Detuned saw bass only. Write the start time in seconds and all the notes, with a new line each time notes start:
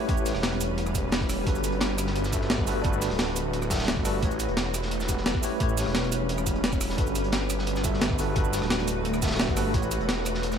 0.09 A1
0.35 E1
1.12 E1
1.47 G1
2.85 G1
3.11 D1
3.97 G1
4.23 A1
4.49 E1
5.61 A1
5.87 E1
6.64 E1
6.98 G1
8.36 G1
8.62 D1
9.48 G1
9.74 A1
10.00 E1